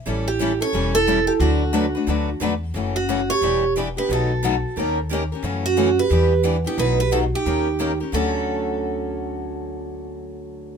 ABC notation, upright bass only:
X:1
M:4/4
L:1/8
Q:"Swing" 1/4=178
K:D
V:1 name="Upright bass" clef=bass
A,,,4 E,,,4 | D,,4 D,,2 E,,2 | F,,,4 E,,,4 | B,,,4 _E,,4 |
F,,4 E,,4 | B,,,4 _E,,4 | D,,8- | D,,8 |]